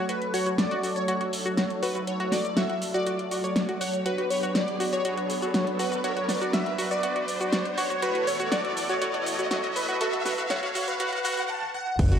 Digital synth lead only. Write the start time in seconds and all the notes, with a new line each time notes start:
0.09 B4
0.34 C#5
0.59 D5
0.96 C#5
1.83 B4
2.07 C#5
2.32 D5
2.57 E5
2.94 D5
3.81 C#5
4.06 B4
4.30 C#5
4.55 D5
4.93 C#5
5.79 B4
6.04 C#5
6.29 D5
6.54 E5
6.91 D5
7.78 C#5
8.03 B4
8.27 C#5
8.52 D5
8.89 C#5
9.76 B4
10.01 A4
10.26 B4
10.50 C#5
10.88 B4
11.50 A5
11.74 F#5